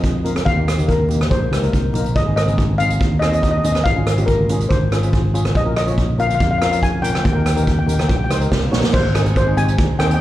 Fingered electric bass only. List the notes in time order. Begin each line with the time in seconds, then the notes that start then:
Already playing: F2
0.46 D#2
1.31 A#1
1.51 C#2
1.73 C2
1.94 A#1
2.16 G#1
3.00 D#2
3.85 G#1
4.70 G#1
5.55 A#1
6.40 F2
7.25 D#2
8.09 A#1
8.30 C#2
8.52 C2
8.73 A#1
8.94 G#1
9.78 D#2
9.99 D#2